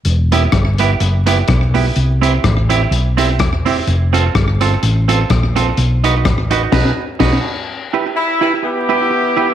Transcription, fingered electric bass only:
X:1
M:4/4
L:1/8
Q:"Swing" 1/4=126
K:Em
V:1 name="Fingered electric bass" clef=bass
E,,,2 G,,,2 F,,,2 B,,,2 | C,,2 A,,,2 B,,,2 E,,,2 | =F,,,2 G,,,2 A,,,2 ^A,,,2 | B,,,2 A,,,2 B,,, z B,,, z |
z8 |]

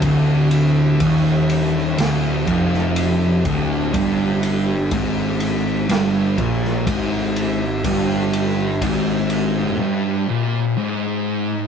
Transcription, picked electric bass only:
X:1
M:4/4
L:1/8
Q:1/4=61
K:Gm
V:1 name="Picked electric bass" clef=bass
D,,,2 E,,,2 D,,, F,,,2 D,,, | G,,,2 ^G,,,2 =G,,, B,,, ^G,,,2 | G,,,2 ^G,,,2 z4 |]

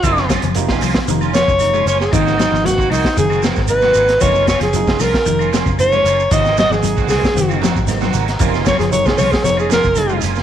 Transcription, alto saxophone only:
X:1
M:4/4
L:1/16
Q:1/4=115
K:Gblyd
V:1 name="Alto saxophone"
G2 z8 d4 d A | E4 G2 E2 A2 z2 _c4 | d2 d A3 B4 z2 d4 | e2 e A3 A4 z6 |
z2 d A d A d A d A B4 z2 |]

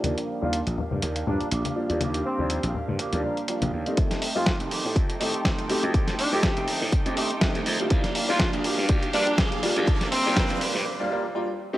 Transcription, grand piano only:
X:1
M:4/4
L:1/16
Q:"Swing 16ths" 1/4=122
K:Fmix
V:1 name="Grand piano"
[F,G,B,D]3 [F,G,B,D] z6 [F,G,B,D] z3 [F,G,B,D] [F,G,B,D] | z3 [F,G,B,D] z4 z [F,G,B,D] [F,G,B,D] z [F,G,B,D] z2 [G,A,CE]- | [G,A,CE]2 z [A,CEG] z6 [A,CEG] z3 [A,CEG] [A,CEG] | z3 [A,CEG] z4 z [A,CEG] [A,CEG] z [A,CEG] z2 [G,B,DF]- |
[G,B,DF]3 [G,B,DF] z6 [G,B,DF] z3 [G,B,DF] [G,B,DF] | z3 [G,B,DF] z4 z [G,B,DF] [G,B,DF] z [G,B,DF] z2 [A,CEG] |]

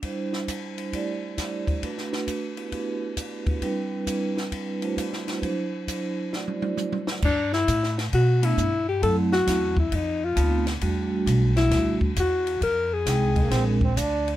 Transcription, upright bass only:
X:1
M:4/4
L:1/8
Q:"Swing" 1/4=134
K:G
V:1 name="Upright bass" clef=bass
z8 | z8 | z8 | z8 |
G,,2 A,,2 B,,2 G,,2 | F,,2 E,,2 =F,,2 D,,2 | E,,2 B,,,2 D,,2 E,,2 | =F,,2 C,,2 _B,,,2 D,,2 |]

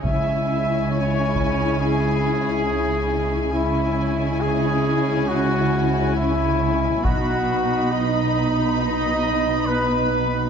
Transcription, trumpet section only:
X:1
M:12/8
L:1/8
Q:3/8=69
K:C#m
V:1 name="Trumpet section"
e3 c3 G6 | E3 G3 F3 E3 | F3 d3 d3 B3 |]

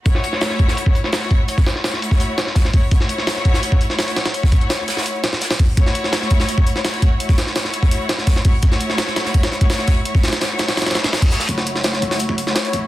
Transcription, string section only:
X:1
M:4/4
L:1/16
Q:1/4=168
K:F#m
V:1 name="String section"
[A,EFc]8- [A,EFc]3 [A,EFc] [A,EFc]4 | [A,EFc]12- [A,EFc]2 [A,EFc]2 | [A,EFc]8- [A,EFc]3 [A,EFc] [A,EFc]4 | [A,EFc]12- [A,EFc]2 z2 |
[A,EFc]8- [A,EFc]3 [A,EFc] [A,EFc]4 | [A,EFc]12- [A,EFc]2 [A,EFc]2 | [A,EFc]8- [A,EFc]3 [A,EFc] [A,EFc]4 | [A,EFc]12- [A,EFc]2 [A,EFc]2 |
[A,EFc]8- [A,EFc]3 [A,EFc] [A,EFc]4 |]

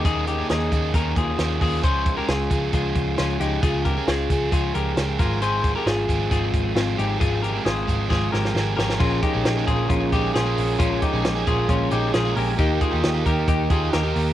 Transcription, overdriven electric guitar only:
X:1
M:4/4
L:1/16
Q:1/4=134
K:Bbdor
V:1 name="Overdriven electric guitar"
[E,B,DA]3 [B,DA]3 [E,B,DA]2 [E,B,DA]4 [E,B,DA]2 [E,B,DA]2 | [D,F,A,DA]3 [A,DA]3 [F,A,DA]2 [F,A,DA]4 [F,A,DA]2 [F,A,DA]2 | [D,F,A,DA]3 [A,DA]3 [F,A,DA]2 [F,A,DA]4 [F,A,DA]2 [F,A,CA]2 | [A,,E,F,A,CA]3 [F,A,CA]3 [F,A,CA]2 [F,A,CA]4 [F,A,CA]2 [F,A,CA]2 |
[A,,E,F,A,CA]3 [F,A,CA]3 [F,A,CA]2 [F,A,CA]4 [F,A,CA]2 [F,A,CA]2 | [F,A,DA]3 [A,DA]2 [B,,F,A,DA]4- [B,,F,A,DA] [F,A,DA]3 [B,,F,A,DA]3 | [F,A,DA]3 [A,DA]2 [B,,F,A,DA]4- [B,,F,A,DA] [F,A,DA]3 [B,,F,A,DA]3 | [E,B,EG]3 [B,EG]2 [E,B,EG]4- [E,B,EG] [E,B,EG]3 [E,B,EG]3 |]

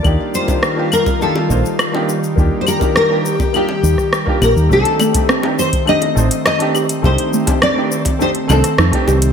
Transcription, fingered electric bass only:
X:1
M:4/4
L:1/16
Q:1/4=103
K:Cdor
V:1 name="Fingered electric bass" clef=bass
E,, z8 z B,,, z4 z | E,, z8 z E,, z3 B,,, E,, | C,, z8 z A,,, z4 z | C,, z8 z C,, z F,, z C,,2 |]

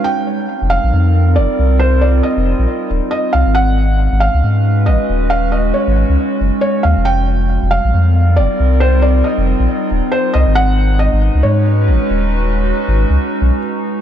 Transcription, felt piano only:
X:1
M:4/4
L:1/8
Q:"Swing 16ths" 1/4=137
K:Ablyd
V:1 name="Felt piano"
g3 f3 d2 | c d e3 z e f | _g3 f3 e2 | f e _d3 z d f |
g3 f3 d2 | c d e3 z c e | _g2 e2 _d4- | _d6 z2 |]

